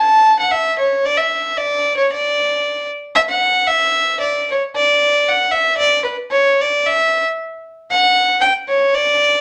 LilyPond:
\new Staff \with { instrumentName = "Fiddle" } { \time 2/4 \key d \major \tempo 4 = 115 a''8. fis''16 e''8 cis''8 | d''16 e''8. d''8. cis''16 | d''4. r8 | e''16 fis''8. e''4 |
d''8 cis''8 d''4 | fis''8 e''8 d''8 b'8 | cis''8 d''8 e''8. r16 | r4 fis''4 |
g''8 cis''8 d''4 | }